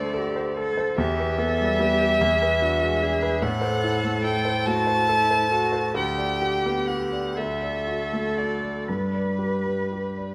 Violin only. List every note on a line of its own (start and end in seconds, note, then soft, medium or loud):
0.00 0.56 D5 medium
0.97 3.44 E5 loud
3.42 4.23 F#5 medium
4.24 4.68 G5 loud
4.67 5.96 A5 loud
5.97 6.89 G5 medium
6.87 7.38 F#5 medium
7.37 8.39 E5 medium
8.38 8.88 D5 medium
8.88 10.35 B4 medium